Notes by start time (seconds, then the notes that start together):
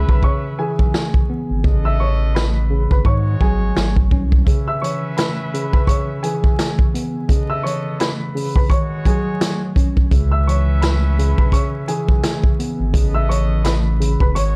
Already playing: C#3 E3 C#4 B4 E5
0.09 B1 B4 B5, kick
0.23 C#3 C#5 C#6, kick
0.58 E3 G#4 G#5
0.79 B1, kick
0.94 snare
1.14 kick
1.30 B3
1.50 G#1
1.64 A1 C#3 B3 A4 D#5, kick
1.85 E5 E6
2.00 E3 C#5 C#6
2.35 B4 B5, snare
2.70 C#3
2.91 G#1 B4 B5, kick
3.05 G#2 D#3 G#3 F#4 C#5 C#6, kick
3.41 G#1 F#3 G#4 G#5, kick
3.77 G#1, snare
3.96 kick
4.11 C2 C#4, kick
4.32 kick
4.46 C#3 C#4 B4 E5, kick, closed hi-hat
4.68 E5 E6
4.82 E3 C#5 C#6, closed hi-hat
5.17 B4 B5, snare, closed hi-hat
5.53 C#3, closed hi-hat
5.73 B4 B5, kick
5.87 C#3 C#5 C#6, kick, closed hi-hat
6.23 E3 G#4 G#5, closed hi-hat
6.44 kick
6.59 snare, closed hi-hat
6.79 kick
6.94 B3, closed hi-hat
7.29 C#3 B3 A4 D#5, kick, closed hi-hat
7.50 E5 E6
7.63 E3 C#5 C#6, closed hi-hat
8.00 B4 B5, snare, closed hi-hat
8.35 C#3, open hi-hat
8.56 B4 B5, kick
8.70 D#3 G#3 F#4 C#5 C#6, kick, closed hi-hat
9.05 F#3 G#4 G#5, kick, closed hi-hat
9.41 snare, closed hi-hat
9.76 C#4, kick, closed hi-hat
9.97 kick
10.11 C#2 C#3 C#4 B4 E5, kick, closed hi-hat
10.32 E5 E6
10.47 E3 C#5 C#6, closed hi-hat
10.82 B4 B5, snare, closed hi-hat
11.18 C#3, closed hi-hat
11.38 B1 B4 B5, kick
11.52 C#3 C#5 C#6, kick, closed hi-hat
11.88 E3 G#4 G#5, closed hi-hat
12.09 B1, kick
12.23 snare, closed hi-hat
12.44 kick
12.59 B3, closed hi-hat
12.80 G#1
12.93 A1 C#3 B3 A4 D#5, kick, closed hi-hat
13.14 E5 E6
13.29 E3 C#5 C#6, closed hi-hat
13.64 B4 B5, snare, closed hi-hat
14.00 C#3, closed hi-hat
14.20 E1 B4 B5, kick
14.35 G#1 D#3 G#3 F#4 C#5 C#6, closed hi-hat